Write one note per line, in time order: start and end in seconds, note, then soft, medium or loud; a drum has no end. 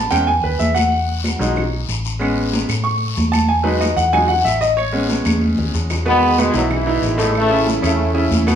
0.00 0.11 A5 medium
0.10 0.41 E2 medium
0.10 0.25 G#3 soft
0.10 0.26 B3 soft
0.10 0.26 C#4 medium
0.10 0.27 G5 medium
0.10 high conga soft
0.10 short guiro medium
0.10 claves medium
0.27 0.43 G#5 medium
0.27 high conga soft
0.27 long guiro medium
0.43 0.58 D#2 medium
0.43 0.59 B4 medium
0.43 high conga soft
0.59 1.34 E2 medium
0.59 0.75 E5 medium
0.59 high conga medium
0.59 short guiro medium
0.75 1.51 F#5 medium
0.75 high conga medium
0.75 short guiro medium
0.75 claves medium
0.92 high conga soft
0.92 long guiro medium
1.08 high conga soft
1.24 high conga medium
1.24 short guiro medium
1.24 claves medium
1.39 1.85 B1 medium
1.39 1.61 F#3 medium
1.39 1.61 G#3 medium
1.39 1.62 D#4 medium
1.39 high conga soft
1.39 short guiro medium
1.56 high conga soft
1.56 low conga medium
1.56 long guiro medium
1.56 claves medium
1.72 high conga soft
1.89 2.63 A1 medium
1.89 high conga soft
1.89 short guiro medium
2.05 short guiro medium
2.19 2.66 G#3 medium
2.19 2.66 B3 medium
2.19 2.66 C#4 medium
2.19 high conga soft
2.19 long guiro medium
2.19 claves medium
2.37 high conga soft
2.53 high conga medium
2.53 short guiro medium
2.69 3.14 A2 medium
2.69 high conga soft
2.69 short guiro medium
2.69 claves medium
2.84 3.29 C#6 medium
2.84 high conga soft
2.84 long guiro medium
3.01 high conga soft
3.17 3.92 E2 loud
3.17 high conga medium
3.17 short guiro medium
3.32 3.48 A5 loud
3.32 high conga medium
3.32 short guiro medium
3.32 claves medium
3.49 3.64 G#5 medium
3.49 high conga soft
3.49 long guiro medium
3.63 3.86 F#3 medium
3.63 3.86 G#3 medium
3.63 3.86 D#4 medium
3.63 3.80 B4 medium
3.63 high conga soft
3.81 3.96 D#5 medium
3.81 high conga medium
3.81 short guiro medium
3.81 claves medium
3.97 4.42 E2 medium
3.97 4.12 F#5 loud
3.97 high conga soft
3.97 short guiro medium
4.13 4.28 F#3 medium
4.13 4.28 G#3 soft
4.13 4.28 D#4 medium
4.13 4.29 G#5 loud
4.13 high conga soft
4.13 low conga medium
4.13 long guiro medium
4.13 claves medium
4.28 4.44 F#5 loud
4.28 high conga soft
4.28 low conga medium
4.45 5.20 A1 medium
4.45 4.61 E5 medium
4.45 high conga soft
4.45 short guiro medium
4.61 4.77 D#5 medium
4.61 short guiro medium
4.77 5.38 C#5 medium
4.77 high conga soft
4.77 long guiro medium
4.77 claves medium
4.93 6.02 G#3 medium
4.93 6.02 B3 soft
4.93 6.02 C#4 medium
4.93 high conga soft
5.09 high conga medium
5.09 short guiro medium
5.25 5.56 E2 medium
5.25 high conga loud
5.25 short guiro medium
5.25 claves medium
5.41 high conga medium
5.41 long guiro medium
5.58 5.73 D#2 medium
5.58 low conga medium
5.74 6.49 E2 medium
5.74 short guiro medium
5.90 low conga medium
5.90 short guiro medium
5.90 claves medium
6.05 6.32 B2 medium
6.05 6.67 D#3 medium
6.05 6.38 G#3 medium
6.05 6.32 B3 medium
6.05 6.37 B3 loud
6.05 6.33 B4 medium
6.05 high conga soft
6.05 long guiro medium
6.22 high conga soft
6.38 6.51 B2 medium
6.38 6.55 G#3 loud
6.38 6.52 B3 medium
6.38 6.52 B4 medium
6.38 high conga medium
6.38 short guiro medium
6.38 claves medium
6.53 6.99 B1 medium
6.53 6.80 E3 medium
6.53 6.63 F#3 medium
6.53 6.81 D#4 medium
6.53 6.81 E4 medium
6.53 high conga soft
6.53 short guiro medium
6.71 7.32 G#2 medium
6.71 7.03 B2 medium
6.71 7.02 E3 loud
6.71 high conga soft
6.71 low conga medium
6.71 long guiro medium
6.71 claves medium
6.86 7.13 E3 medium
6.86 7.13 D#4 medium
6.86 7.13 E4 medium
6.86 high conga soft
7.02 7.77 A1 loud
7.02 7.33 B2 medium
7.02 7.33 D#3 medium
7.02 7.35 G#3 medium
7.02 high conga soft
7.02 short guiro medium
7.18 7.44 A2 loud
7.18 7.45 A3 loud
7.18 7.45 A4 loud
7.18 short guiro medium
7.35 7.84 C#3 medium
7.35 7.84 E3 medium
7.35 7.66 A3 loud
7.35 high conga soft
7.35 long guiro medium
7.35 claves medium
7.50 7.77 C#3 medium
7.50 7.77 C#4 medium
7.50 7.77 E4 medium
7.50 high conga soft
7.67 high conga medium
7.67 short guiro medium
7.82 8.28 E2 loud
7.82 8.09 C#3 medium
7.82 8.44 C#3 medium
7.82 8.44 E3 medium
7.82 8.29 A3 medium
7.82 8.09 C#4 medium
7.82 8.09 E4 medium
7.82 high conga soft
7.82 short guiro medium
7.82 claves medium
7.99 high conga soft
7.99 long guiro medium
8.14 8.41 C#3 medium
8.14 8.41 C#4 medium
8.14 8.41 E4 medium
8.14 high conga soft
8.31 8.55 E2 loud
8.31 high conga medium
8.31 short guiro medium
8.47 8.55 B2 loud
8.47 8.55 B3 loud
8.47 8.55 B4 loud
8.47 high conga medium
8.47 short guiro medium
8.47 claves medium